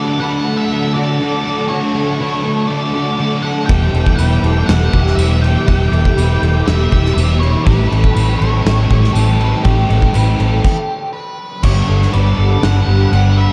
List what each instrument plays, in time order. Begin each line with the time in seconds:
Already playing: distorted electric guitar D3 A3 D4, overdriven electric guitar D3 F#3 A3 D4, clean electric guitar F#4 A4, analog synth pad A4 F#5 A5, lead electric guitar D5
0.19 distorted electric guitar D3 A3 D4, overdriven electric guitar D3 F#3 A3 D4, clean electric guitar B4, lead electric guitar F#5
0.45 distorted electric guitar A3 D4, clean electric guitar A4
0.57 lead electric guitar E5
0.71 overdriven electric guitar D3 F#3 A3 D4
0.94 overdriven electric guitar A3 D4, distorted electric guitar D4, clean electric guitar F#4, lead electric guitar D5
0.98 overdriven electric guitar F#3, distorted electric guitar A3
1.20 distorted electric guitar D3 A3 D4, overdriven electric guitar D3 F#3 A3 D4
1.45 overdriven electric guitar F#3 A3 D4, clean electric guitar A4
1.68 distorted electric guitar D3 A3, overdriven electric guitar D3 F#3 A3 D4, clean electric guitar F#4, lead electric guitar C#5
1.73 distorted electric guitar D4
1.94 overdriven electric guitar F#3 A3 D4, distorted electric guitar A3 D4, clean electric guitar A4
2.19 overdriven electric guitar D3 F#3 A3 D4, distorted electric guitar D3 A3 D4, clean electric guitar B4
2.43 distorted electric guitar A3 D4, clean electric guitar A4
2.67 overdriven electric guitar D3 F#3 A3, lead electric guitar D5
2.72 overdriven electric guitar D4
2.94 overdriven electric guitar F#3 A3 D4, distorted electric guitar A3 D4, clean electric guitar F#4
3.18 overdriven electric guitar D3 F#3 A3 D4, distorted electric guitar D3 A3 D4
3.42 overdriven electric guitar F#3 A3 D4, clean electric guitar A4, lead electric guitar F#5
3.66 fingered electric bass E1, distorted electric guitar E2, overdriven electric guitar E3 G3 B3, clean electric guitar G4, lead electric guitar G5, kick, crash
3.70 distorted electric guitar B2 E3, overdriven electric guitar E4, analog synth pad G4 E5 D6
3.93 fingered electric bass E1, distorted electric guitar E3, overdriven electric guitar G3 B3 E4, clean electric guitar A4, crash
3.97 distorted electric guitar B2
4.06 kick
4.17 fingered electric bass E1, distorted electric guitar E2 B2, overdriven electric guitar E3 G3 B3 E4, clean electric guitar B4, lead electric guitar G5, tambourine, crash
4.21 distorted electric guitar E3
4.43 fingered electric bass E1, distorted electric guitar E3, clean electric guitar A4, crash
4.47 distorted electric guitar B2
4.66 fingered electric bass E1, overdriven electric guitar E3 G3 B3 E4, lead electric guitar F#5, snare, crash
4.92 fingered electric bass E1, distorted electric guitar B2 E3, overdriven electric guitar G3 B3 E4, clean electric guitar G4, kick, crash
5.07 snare
5.15 fingered electric bass E1, distorted electric guitar E2, overdriven electric guitar E3 G3 B3 E4, lead electric guitar E5, tambourine, crash
5.20 distorted electric guitar B2 E3
5.41 overdriven electric guitar G3 B3 E4, clean electric guitar B4, lead electric guitar G5, crash
5.67 fingered electric bass E1, distorted electric guitar E2 B2, overdriven electric guitar E3 G3 B3 E4, clean electric guitar G4, lead electric guitar G5, kick, crash
5.71 distorted electric guitar E3
5.92 fingered electric bass E1, distorted electric guitar E3, overdriven electric guitar G3 B3 E4, clean electric guitar A4, crash
5.96 distorted electric guitar B2
6.05 kick
6.17 fingered electric bass E1, distorted electric guitar E2 B2 E3, overdriven electric guitar E3 G3 B3 E4, clean electric guitar B4, tambourine, crash
6.42 fingered electric bass E1, distorted electric guitar B2 E3, clean electric guitar A4, crash
6.67 fingered electric bass E1, overdriven electric guitar E3 G3 B3 E4, lead electric guitar E5, snare, crash
6.91 fingered electric bass E1, distorted electric guitar B2 E3, overdriven electric guitar G3 B3 E4, clean electric guitar G4, kick, crash
7.06 snare
7.14 fingered electric bass E1, distorted electric guitar E2 B2, overdriven electric guitar E3 G3 B3, lead electric guitar E5, tambourine, crash
7.19 distorted electric guitar E3, overdriven electric guitar E4
7.39 overdriven electric guitar B3 E4, clean electric guitar B4, lead electric guitar C#5, crash
7.43 overdriven electric guitar G3
7.65 fingered electric bass A1, overdriven electric guitar A2 E3 G3 C#4 E4, distorted electric guitar A2 E3, clean electric guitar G4, analog synth pad A4 G5 C#6, lead electric guitar B4, kick, crash
7.69 distorted electric guitar A3
7.90 fingered electric bass A1, overdriven electric guitar G3 C#4 E4, distorted electric guitar A3, clean electric guitar A4, crash
7.95 distorted electric guitar E3
8.04 kick
8.14 fingered electric bass A1, distorted electric guitar A2 E3, overdriven electric guitar E3 G3 C#4 E4, lead electric guitar B4, clean electric guitar B4, tambourine, crash
8.20 distorted electric guitar A3
8.38 fingered electric bass A1, clean electric guitar A4, lead electric guitar C#5, crash
8.42 distorted electric guitar E3 A3
8.65 fingered electric bass A1, overdriven electric guitar A2 E3 G3 C#4 E4, snare, crash
8.90 fingered electric bass A1, overdriven electric guitar G3 C#4 E4, distorted electric guitar A3, clean electric guitar G4, kick, crash
8.94 distorted electric guitar E3
9.04 snare
9.13 fingered electric bass A1, distorted electric guitar A2 E3, overdriven electric guitar E3 G3 C#4 E4, lead electric guitar A4, tambourine, crash
9.18 distorted electric guitar A3
9.39 overdriven electric guitar G3 C#4 E4, clean electric guitar B4, crash
9.63 fingered electric bass A1, overdriven electric guitar A2 E3 G3 C#4, distorted electric guitar A2 E3, lead electric guitar G4, clean electric guitar G4, kick, crash
9.67 distorted electric guitar A3, overdriven electric guitar E4
9.89 fingered electric bass A1, distorted electric guitar E3 A3, overdriven electric guitar G3 C#4 E4, clean electric guitar A4, crash
10.02 kick
10.14 fingered electric bass A1, distorted electric guitar A2 E3, overdriven electric guitar E3 G3 C#4 E4, clean electric guitar B4, tambourine, crash
10.18 distorted electric guitar A3
10.39 fingered electric bass A1, distorted electric guitar E3 A3, clean electric guitar A4, crash
10.64 kick, crash
11.13 lead electric guitar B4
11.63 fingered electric bass G1, overdriven electric guitar G2 D3 G3 B3 D4, distorted electric guitar G2 D3, clean electric guitar G4, analog synth pad G4 F#5 B5, lead electric guitar C#5, kick, crash
11.67 distorted electric guitar G3
11.88 fingered electric bass G1, clean electric guitar A4
12.02 snare
12.12 fingered electric bass G1, distorted electric guitar G2 D3, overdriven electric guitar D3 G3 B3 D4, clean electric guitar B4, lead electric guitar D5, crash
12.18 distorted electric guitar G3
12.38 fingered electric bass G1, clean electric guitar A4
12.62 fingered electric bass G1, overdriven electric guitar G2 D3 G3 B3 D4, distorted electric guitar G2 D3 G3, lead electric guitar F#5, snare, crash
12.87 fingered electric bass G1, distorted electric guitar G3, overdriven electric guitar G3 B3 D4, clean electric guitar G4
12.92 distorted electric guitar D3
13.12 fingered electric bass G1, distorted electric guitar G2 D3 G3, overdriven electric guitar D3 G3 B3 D4, lead electric guitar F#5, crash
13.37 clean electric guitar B4, lead electric guitar E5